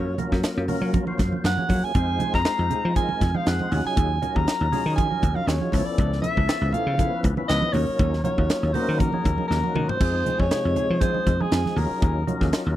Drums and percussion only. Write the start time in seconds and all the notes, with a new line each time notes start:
0.18 closed hi-hat, high conga, low conga
0.32 kick, snare
0.43 snare, closed hi-hat
0.68 open hi-hat, low conga
0.93 kick, closed hi-hat, high conga
1.07 high conga
1.18 kick, snare, closed hi-hat, low conga
1.32 high conga
1.44 snare, closed hi-hat
1.58 high conga
1.69 kick, open hi-hat, low conga
1.95 kick, closed hi-hat
2.20 closed hi-hat, high conga, low conga
2.34 kick, snare
2.45 snare, closed hi-hat
2.70 closed hi-hat, low conga
2.95 kick, closed hi-hat, high conga
3.09 high conga
3.20 kick, snare, closed hi-hat, low conga
3.34 high conga
3.46 snare, closed hi-hat
3.60 high conga
3.72 open hi-hat, low conga
3.97 kick, closed hi-hat
4.23 closed hi-hat, low conga
4.36 kick
4.48 snare, closed hi-hat
4.72 open hi-hat, low conga
4.97 kick, closed hi-hat, high conga
5.11 high conga
5.22 kick, closed hi-hat, low conga
5.36 high conga
5.48 snare, closed hi-hat
5.61 high conga
5.72 kick, snare, open hi-hat, low conga
5.98 kick, closed hi-hat
6.13 snare
6.22 closed hi-hat, high conga, low conga
6.37 kick
6.49 snare, closed hi-hat
6.72 closed hi-hat, low conga
6.98 kick, closed hi-hat, high conga
7.23 kick, closed hi-hat, low conga
7.37 high conga
7.49 snare, closed hi-hat
7.62 high conga
7.73 open hi-hat, low conga
7.99 kick, closed hi-hat
8.13 snare
8.24 closed hi-hat, high conga, low conga
8.38 kick
8.50 snare, closed hi-hat
8.74 open hi-hat, low conga
8.99 kick, closed hi-hat, high conga
9.12 high conga
9.24 kick, closed hi-hat, low conga
9.38 high conga
9.51 snare
9.64 high conga
9.75 mid tom, low conga
9.89 floor tom
10.01 kick, crash
10.26 closed hi-hat, high conga, low conga
10.39 kick
10.51 snare, closed hi-hat
10.76 closed hi-hat, low conga
11.01 kick, closed hi-hat, high conga
11.14 high conga
11.27 kick, closed hi-hat, low conga
11.41 high conga
11.52 snare, closed hi-hat
11.66 snare, high conga
11.77 open hi-hat, low conga
12.02 kick, closed hi-hat
12.27 closed hi-hat, high conga, low conga
12.41 kick, snare
12.53 snare, closed hi-hat